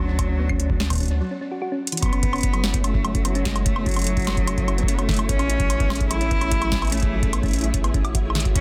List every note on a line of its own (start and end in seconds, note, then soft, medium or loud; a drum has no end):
0.00 1.21 D2 medium
0.00 1.17 F#3 medium
0.00 1.18 D4 medium
0.00 1.18 C#5 medium
0.00 1.17 F#5 medium
0.00 1.18 A5 medium
0.09 0.18 C#4 medium
0.19 0.26 F#3 medium
0.19 kick loud
0.19 closed hi-hat medium
0.19 high woodblock medium
0.29 0.36 C#4 medium
0.39 0.46 B3 medium
0.49 0.58 C#4 loud
0.49 kick loud
0.49 high woodblock medium
0.60 0.69 C#4 medium
0.60 closed hi-hat medium
0.70 0.77 F#3 medium
0.70 kick loud
0.80 0.87 C#4 medium
0.80 snare loud
0.90 0.97 B3 medium
0.90 kick medium
0.90 closed hi-hat medium
0.90 high woodblock medium
0.93 kick medium
0.93 closed hi-hat medium
0.95 kick medium
0.95 closed hi-hat medium
0.98 kick medium
0.98 closed hi-hat soft
1.00 1.09 C#4 loud
1.00 kick soft
1.00 closed hi-hat soft
1.03 kick soft
1.03 closed hi-hat soft
1.05 kick soft
1.05 closed hi-hat soft
1.08 1.20 C#4 medium
1.08 kick soft
1.08 closed hi-hat soft
1.21 1.28 F#3 medium
1.31 1.38 C#4 medium
1.41 1.48 C#4 medium
1.51 1.60 F#4 medium
1.62 1.71 F#4 loud
1.72 1.76 C#4 medium
1.87 closed hi-hat medium
1.92 1.99 E3 medium
1.92 closed hi-hat medium
1.97 closed hi-hat medium
2.02 5.27 F#1 medium
2.02 2.09 F#3 medium
2.02 8.52 A3 medium
2.02 2.80 B3 loud
2.02 5.26 C#4 medium
2.02 8.61 E4 medium
2.02 5.26 F#4 medium
2.02 8.52 C#5 medium
2.02 8.61 E5 medium
2.02 kick loud
2.02 closed hi-hat medium
2.02 high woodblock soft
2.06 high woodblock soft
2.09 2.20 C#4 medium
2.09 closed hi-hat soft
2.09 high woodblock soft
2.13 high woodblock medium
2.23 2.30 B3 medium
2.23 kick loud
2.23 closed hi-hat medium
2.33 2.42 C#4 loud
2.33 closed hi-hat soft
2.33 high woodblock medium
2.36 closed hi-hat soft
2.38 closed hi-hat soft
2.41 kick loud
2.41 closed hi-hat soft
2.43 2.53 C#4 medium
2.43 closed hi-hat loud
2.54 2.60 F#3 medium
2.54 closed hi-hat soft
2.54 high woodblock medium
2.64 2.71 C#4 medium
2.64 snare loud
2.74 2.81 B3 medium
2.74 kick loud
2.74 closed hi-hat medium
2.84 3.27 A3 medium
2.84 2.93 C#4 loud
2.84 closed hi-hat medium
2.84 high woodblock medium
2.94 3.04 C#4 medium
2.94 kick loud
3.05 3.11 F#3 medium
3.05 closed hi-hat soft
3.05 high woodblock medium
3.15 3.22 C#4 medium
3.15 kick loud
3.15 closed hi-hat soft
3.25 3.47 F#3 medium
3.25 3.32 B3 medium
3.25 closed hi-hat loud
3.25 high woodblock medium
3.35 3.44 C#4 loud
3.35 closed hi-hat soft
3.45 3.67 G#3 medium
3.45 3.55 C#4 medium
3.45 kick loud
3.45 snare loud
3.45 closed hi-hat medium
3.56 3.62 F#3 medium
3.56 closed hi-hat soft
3.56 high woodblock medium
3.66 3.88 A3 loud
3.66 3.73 C#4 medium
3.66 kick loud
3.66 closed hi-hat medium
3.76 3.83 B3 medium
3.76 high woodblock medium
3.86 4.90 F#3 loud
3.86 3.95 C#4 loud
3.86 kick loud
3.86 closed hi-hat soft
3.89 closed hi-hat soft
3.91 closed hi-hat soft
3.94 4.06 C#4 medium
3.94 closed hi-hat soft
3.96 closed hi-hat soft
3.96 high woodblock medium
3.99 closed hi-hat medium
4.02 closed hi-hat medium
4.04 4.13 F#3 medium
4.04 closed hi-hat medium
4.07 closed hi-hat loud
4.17 4.24 C#4 medium
4.17 kick loud
4.17 closed hi-hat soft
4.19 closed hi-hat soft
4.22 closed hi-hat soft
4.25 4.34 B3 medium
4.25 snare loud
4.25 closed hi-hat soft
4.27 closed hi-hat medium
4.27 high woodblock medium
4.30 closed hi-hat soft
4.30 high woodblock soft
4.32 closed hi-hat soft
4.32 high woodblock soft
4.35 4.46 C#4 loud
4.35 kick loud
4.35 closed hi-hat soft
4.35 high woodblock soft
4.47 4.57 C#4 medium
4.47 closed hi-hat medium
4.47 high woodblock medium
4.58 4.64 F#3 medium
4.58 kick loud
4.58 closed hi-hat soft
4.68 4.75 C#4 medium
4.68 closed hi-hat soft
4.68 high woodblock medium
4.78 4.85 B3 medium
4.78 closed hi-hat soft
4.83 kick loud
4.88 4.97 A3 medium
4.88 4.97 C#4 loud
4.88 closed hi-hat loud
4.95 5.04 B3 medium
4.95 5.08 C#4 medium
4.95 closed hi-hat soft
4.95 high woodblock medium
5.02 5.30 A3 loud
5.09 5.15 F#3 medium
5.09 kick loud
5.09 snare loud
5.09 closed hi-hat soft
5.11 closed hi-hat soft
5.14 closed hi-hat soft
5.16 5.26 C#4 medium
5.16 closed hi-hat medium
5.19 closed hi-hat soft
5.19 high woodblock medium
5.29 8.54 A1 medium
5.29 5.36 B3 medium
5.29 6.10 C#4 loud
5.29 8.52 C#4 medium
5.29 8.52 G#4 medium
5.29 kick loud
5.29 closed hi-hat loud
5.39 5.48 C#4 loud
5.39 closed hi-hat soft
5.39 high woodblock medium
5.49 5.59 C#4 medium
5.49 closed hi-hat medium
5.60 5.67 F#3 medium
5.60 kick loud
5.60 closed hi-hat soft
5.70 5.77 C#4 medium
5.70 closed hi-hat loud
5.70 high woodblock medium
5.80 5.87 B3 medium
5.80 kick loud
5.80 closed hi-hat soft
5.90 5.99 C#4 loud
5.90 snare loud
5.90 high woodblock medium
5.95 closed hi-hat medium
6.00 6.10 C#4 medium
6.00 kick loud
6.00 closed hi-hat soft
6.11 6.18 F#3 medium
6.11 6.94 E4 loud
6.11 closed hi-hat medium
6.11 high woodblock soft
6.21 6.28 C#4 medium
6.21 closed hi-hat soft
6.31 6.38 B3 medium
6.31 kick loud
6.31 closed hi-hat soft
6.41 6.50 C#4 loud
6.41 closed hi-hat soft
6.41 high woodblock medium
6.51 6.61 C#4 medium
6.51 kick loud
6.51 closed hi-hat loud
6.62 6.69 F#3 medium
6.62 closed hi-hat soft
6.62 high woodblock medium
6.72 6.79 C#4 medium
6.72 kick loud
6.72 snare loud
6.82 6.89 B3 medium
6.82 closed hi-hat soft
6.82 high woodblock medium
6.85 closed hi-hat soft
6.87 closed hi-hat soft
6.90 7.74 A3 loud
6.90 7.01 C#4 loud
6.90 closed hi-hat soft
6.92 closed hi-hat medium
6.95 closed hi-hat soft
6.97 closed hi-hat soft
7.00 7.12 C#4 medium
7.00 kick loud
7.00 closed hi-hat soft
7.02 closed hi-hat soft
7.13 7.20 F#3 medium
7.23 7.30 C#4 medium
7.23 kick loud
7.23 closed hi-hat soft
7.33 7.40 B3 medium
7.33 closed hi-hat medium
7.33 high woodblock medium
7.43 7.52 C#4 loud
7.43 kick loud
7.43 closed hi-hat soft
7.46 closed hi-hat soft
7.48 closed hi-hat soft
7.51 closed hi-hat soft
7.53 7.63 C#4 medium
7.53 closed hi-hat medium
7.56 closed hi-hat soft
7.59 closed hi-hat soft
7.61 7.71 F#3 medium
7.61 closed hi-hat soft
7.64 closed hi-hat soft
7.74 7.81 C#4 medium
7.74 kick loud
7.74 closed hi-hat medium
7.84 7.91 B3 medium
7.84 closed hi-hat soft
7.84 high woodblock soft
7.94 8.01 C#4 medium
7.94 kick loud
7.94 closed hi-hat soft
8.04 8.11 F#4 medium
8.04 closed hi-hat soft
8.04 high woodblock medium
8.15 8.22 F#4 loud
8.15 kick loud
8.15 closed hi-hat medium
8.30 high woodblock soft
8.35 8.42 G#3 medium
8.35 snare loud
8.35 closed hi-hat soft
8.40 closed hi-hat medium
8.45 8.55 F#4 medium
8.45 kick loud
8.45 closed hi-hat soft
8.55 8.61 E2 medium
8.55 8.61 D3 medium
8.55 8.60 E3 medium
8.55 8.61 G#3 medium
8.55 8.61 C#4 loud
8.55 8.61 F#4 medium
8.55 8.61 B4 medium
8.55 kick loud
8.55 closed hi-hat medium